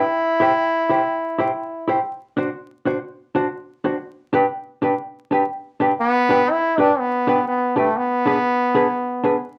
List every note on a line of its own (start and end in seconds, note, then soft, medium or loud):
0.00 1.89 E4 loud
0.40 0.51 E4 medium
0.40 0.52 G4 medium
0.40 0.52 C5 loud
0.89 1.00 E4 medium
0.89 1.01 G4 medium
0.89 1.01 C5 medium
1.38 1.50 E4 medium
1.38 1.50 G4 medium
1.38 1.50 C5 medium
1.88 1.99 E4 medium
1.88 1.99 G4 medium
1.88 1.99 C5 medium
2.37 2.48 D4 medium
2.37 2.48 F#4 medium
2.37 2.49 C5 medium
2.85 2.97 D4 medium
2.85 2.97 F#4 medium
2.85 2.98 C5 medium
3.35 3.46 D4 medium
3.35 3.46 F#4 medium
3.35 3.47 C5 medium
3.84 3.95 D4 medium
3.84 3.95 F#4 medium
3.84 3.96 C5 medium
4.33 4.44 D4 medium
4.33 4.44 G4 medium
4.33 4.45 B4 medium
4.82 4.93 D4 medium
4.82 4.93 G4 medium
4.82 4.94 B4 medium
5.31 5.42 D4 medium
5.31 5.43 G4 medium
5.31 5.43 B4 medium
5.80 5.91 D4 medium
5.80 5.92 G4 medium
5.80 5.92 B4 medium
6.00 6.52 B3 loud
6.29 6.40 D4 medium
6.29 6.41 G4 medium
6.29 6.41 B4 loud
6.50 6.81 E4 loud
6.78 6.89 D4 medium
6.78 7.01 D4 loud
6.78 6.90 G4 medium
6.78 6.90 B4 medium
6.99 7.47 B3 medium
7.27 7.38 D4 medium
7.27 7.39 G4 medium
7.27 7.39 B4 medium
7.48 7.75 B3 medium
7.76 7.98 A3 medium
7.76 7.87 D4 medium
7.76 7.88 G4 medium
7.76 7.88 B4 medium
7.97 9.44 B3 loud
8.26 8.37 D4 medium
8.26 8.37 G#4 medium
8.26 8.38 B4 medium
8.75 8.86 D4 medium
8.75 8.86 G#4 medium
8.75 8.87 B4 medium
9.24 9.35 D4 medium
9.24 9.35 G#4 medium
9.24 9.35 B4 medium